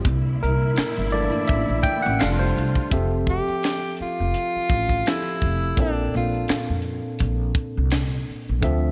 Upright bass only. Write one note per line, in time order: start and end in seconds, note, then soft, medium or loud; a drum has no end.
0.06 0.35 C2 medium
0.43 0.72 C2 medium
0.78 muted upright bass stroke soft
0.98 1.27 G1 medium
1.50 1.66 A1 medium
1.69 1.82 A#1 medium
2.06 2.18 A1 loud
2.22 2.51 F1 loud
2.57 2.73 C2 medium
2.92 3.38 F1 medium
3.49 muted upright bass stroke soft
4.00 muted upright bass stroke soft
4.20 4.33 F1 medium
4.56 muted upright bass stroke soft
4.71 5.00 A1 medium
5.43 5.72 F1 medium
5.79 6.07 A#1 medium
6.14 6.43 A#1 medium
6.50 muted upright bass stroke soft
6.70 6.99 F2 medium
7.22 7.50 A#1 medium
7.77 8.19 C2 medium
8.30 muted upright bass stroke soft
8.49 8.64 A#1 medium
8.64 8.92 D2 loud